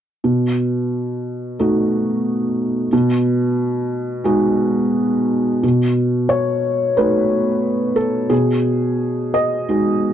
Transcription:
0.24 B2
1.59 A3 D#4 F#4
2.93 B2
4.24 G#3 D#4 F#4
5.63 B2
6.29 C#5
6.97 A3 D#4 F#4 B4
7.96 A4
8.30 B2 G#4
9.34 D#5
9.69 G#3 D#4 F#4

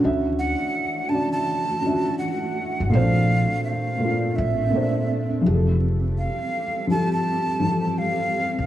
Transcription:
0.00 D2 D3 E3 A3 C#4 E4 F#4
0.05 E5
0.39 F#5
1.09 C#3 D3 F#4 A5
1.14 D5
1.32 A5
1.81 D3 C#4 F4
1.86 E5
1.91 F#4
2.18 F#5
2.80 G1
2.89 A#2 A3 C4 D4 F5
2.93 A#1 C4 C5
3.00 D4
3.64 F5
3.98 A#2 A3
4.02 D4 F4
4.36 A1 E5
4.70 A#2 A3 D4
4.76 C5
5.41 E3 F3 G3 C4 G4 A4
5.46 F1 G#4
5.54 A4
6.18 F5
6.87 F3 E4 G4 A5
6.93 A4
7.13 A5
7.60 E3 F3 G4
7.65 A4
7.98 F5
8.58 G1

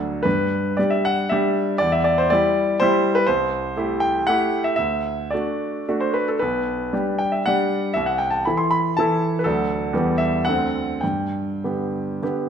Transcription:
Already playing: D2 F#3 D4 A4
0.23 G2 B4
0.77 G3 D4 G4 D5
0.90 E5
1.05 F#5
1.29 G3 D4 G4 E5
1.78 E2 D5
1.92 E5
2.04 D5
2.18 C5
2.30 G3 E4 G4 D5
2.80 G3 E4 G4 C5
3.15 B4
3.27 C2 C5
3.77 A3 E4 G4
4.00 G5
4.27 A3 E4 G4 F#5
4.64 E5
4.76 D2 E5
5.31 A3 D4 F#4 D5
5.88 A3 D4 F#4
6.00 C5
6.14 B4
6.28 A4
6.39 B1 B4
6.93 G3 D4 G4
7.19 G5
7.32 E5
7.46 G3 D4 G4 F#5
7.94 C2 E5
8.06 F#5
8.18 G5
8.30 A5
8.45 E3 E4 A4 B5
8.57 C6
8.71 B5
8.97 E3 E4 A4 A5
9.39 B4
9.44 D2 F#3 D4 A4
9.93 E2 G3 B3 G4
10.18 E5
10.45 D2 D3 C4 A4 F#5
11.01 G2 G5
11.64 D3 B3 G4
12.22 D3 B3 G4

